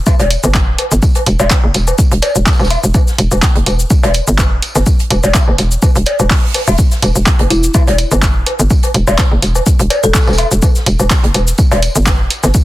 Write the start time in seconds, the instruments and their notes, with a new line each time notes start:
0.07 kick, tambourine, cabasa, high woodblock, low woodblock
0.20 fm bass E1, closed hi-hat, cowbell, cabasa
0.30 open hi-hat, tambourine
0.44 fm bass G1, cabasa, low woodblock
0.54 kick, snare, clap, tambourine, cabasa
0.68 fm bass E1
0.78 open hi-hat, low woodblock
0.92 fm bass G1, cabasa
1.02 kick, tambourine, cabasa
1.15 closed hi-hat, cabasa, low woodblock
1.26 fm bass E1, open hi-hat, tambourine
1.40 fm bass E1, cowbell, cabasa, high woodblock
1.50 kick, snare, clap, tambourine, cabasa, low woodblock
1.64 fm bass F#1
1.74 fm bass E1, snare, open hi-hat, tambourine
1.88 cabasa, low woodblock
1.99 kick, tambourine, cabasa
2.11 fm bass E1, closed hi-hat, cabasa
2.22 open hi-hat, tambourine, cowbell, low woodblock
2.36 fm bass E1, cabasa
2.46 kick, snare, clap, tambourine, cabasa
2.53 snare, tambourine
2.59 fm bass E1, snare, tambourine, low woodblock
2.65 snare, tambourine
2.70 snare, open hi-hat, tambourine, high woodblock
2.84 fm bass E1, cabasa
2.94 kick, tambourine, cabasa, low woodblock
3.07 snare, cabasa
3.18 fm bass E1, open hi-hat, tambourine
3.31 fm bass E1, cabasa, low woodblock
3.42 kick, snare, clap, tambourine, cabasa
3.55 fm bass F#1, closed hi-hat
3.66 fm bass E1, open hi-hat, tambourine, low woodblock
3.79 cabasa
3.90 kick, tambourine, cabasa
4.03 fm bass E1, closed hi-hat, cowbell, cabasa, high woodblock, low woodblock
4.14 open hi-hat, tambourine
4.28 fm bass G1, cabasa
4.38 kick, snare, clap, tambourine, cabasa, low woodblock
4.52 fm bass E1
4.62 open hi-hat, tambourine
4.75 fm bass G1, snare, cabasa, low woodblock
4.86 kick, tambourine, cabasa
5.00 closed hi-hat, cabasa
5.10 fm bass E1, open hi-hat, tambourine, low woodblock
5.24 fm bass E1, cowbell, cabasa
5.34 kick, snare, clap, tambourine, cabasa, high woodblock
5.48 fm bass F#1, low woodblock
5.58 fm bass E1, snare, open hi-hat, tambourine
5.72 cabasa
5.82 kick, tambourine, cabasa, low woodblock
5.96 fm bass E1, closed hi-hat, cabasa
6.06 open hi-hat, tambourine, cowbell
6.20 fm bass E1, cabasa, low woodblock
6.30 kick, snare, clap, open hi-hat, cabasa
6.54 snare, open hi-hat, tambourine, low woodblock
6.68 fm bass E1, cabasa, high woodblock
6.78 kick, tambourine, cabasa
6.91 snare, cabasa
7.02 fm bass E1, open hi-hat, tambourine, low woodblock
7.16 fm bass E1, cabasa
7.26 kick, snare, clap, tambourine, cabasa
7.39 fm bass F#1, closed hi-hat, low woodblock
7.50 fm bass E1, marimba E4, open hi-hat, tambourine
7.64 cabasa
7.74 kick, tambourine, cabasa, high woodblock, low woodblock
7.88 fm bass E1, closed hi-hat, cowbell, cabasa
7.98 open hi-hat, tambourine
8.11 fm bass G1, cabasa, low woodblock
8.22 kick, snare, clap, tambourine, cabasa
8.36 fm bass E1
8.46 open hi-hat, low woodblock
8.59 fm bass G1, cabasa
8.70 kick, tambourine, cabasa
8.83 closed hi-hat, cabasa, low woodblock
8.94 fm bass E1, open hi-hat, tambourine
9.07 fm bass E1, cowbell, cabasa, high woodblock
9.18 kick, snare, clap, tambourine, cabasa, low woodblock
9.32 fm bass F#1
9.42 fm bass E1, snare, open hi-hat, tambourine
9.55 cabasa, low woodblock
9.66 kick, tambourine, cabasa
9.79 fm bass E1, closed hi-hat, cabasa
9.90 open hi-hat, tambourine, cowbell, low woodblock
10.04 fm bass E1, marimba A4, cabasa
10.14 kick, snare, clap, tambourine, cabasa
10.21 snare, tambourine
10.27 fm bass E1, snare, tambourine, low woodblock
10.33 snare, tambourine
10.38 snare, open hi-hat, tambourine, high woodblock
10.51 fm bass E1, cabasa
10.62 kick, tambourine, cabasa, low woodblock
10.75 snare, cabasa
10.86 fm bass E1, open hi-hat, tambourine
10.99 fm bass E1, cabasa, low woodblock
11.10 kick, snare, clap, tambourine, cabasa
11.24 fm bass F#1, closed hi-hat
11.34 fm bass E1, open hi-hat, tambourine, low woodblock
11.48 cabasa
11.58 kick, tambourine, cabasa
11.72 fm bass E1, closed hi-hat, cowbell, cabasa, high woodblock, low woodblock
11.82 open hi-hat, tambourine
11.96 fm bass G1, cabasa
12.06 kick, snare, clap, tambourine, cabasa, low woodblock
12.20 fm bass E1
12.30 open hi-hat, tambourine
12.43 fm bass G1, snare, cabasa, low woodblock
12.54 kick, tambourine, cabasa